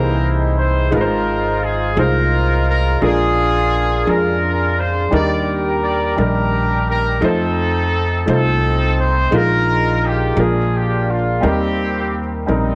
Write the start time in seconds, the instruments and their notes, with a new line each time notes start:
Already playing: upright bass C2, upright piano C3 E3 A#3 G#4 C5, horn section D#4 E4 A#4
0.58 horn section C5
0.91 upright bass G#1, upright piano G#2 G#3 D#4 F4 B4, horn section D#4 F4 A#4
1.01 upright piano C5
1.63 horn section G#4
1.96 upright bass C2, upright piano G#3 D#4 F4 C5, horn section D#4 F4 A#4
2.69 horn section A#4
3.01 upright bass A#1, upright piano A#2 G#3 D4 F4 A#4, horn section D4 F4 G#4
4.06 upright bass F2, upright piano G#3 D4 F4 G#4, horn section D4 F4 A#4
4.79 horn section C5
5.11 upright bass D#2, upright piano D#3 G3 D4 D#4 A#4, horn section G4 A#4 D5
5.83 horn section D5
6.16 upright bass A#1, upright piano D#3 G3 D4 A#4, horn section D4 G4 A#4
6.89 horn section A#4
7.21 upright bass F2, upright piano A3 D#4 F4 C5, horn section D#4
7.25 horn section C4 A4
8.26 upright bass C2, upright piano A3 D#4 F4 C5
8.31 horn section C4 D#4 A4
9.00 horn section C5
9.31 upright bass A#1, upright piano A#2 G#3 D#4 F4 A#4, horn section F4
9.35 horn section D#4 A#4
10.06 horn section G4
10.36 upright bass A#1, upright piano A#2 G#3 D4 F4 A#4
10.40 horn section D4 F4 G#4
10.77 horn section G4
11.10 horn section F4
11.41 upright bass D#2, upright piano D#3 G3 C4 D#4 A#4
11.45 horn section A#3 C4 G4
12.46 upright bass A#1, upright piano G3 C4 D#4 A#4
12.50 horn section G3 C4 D#4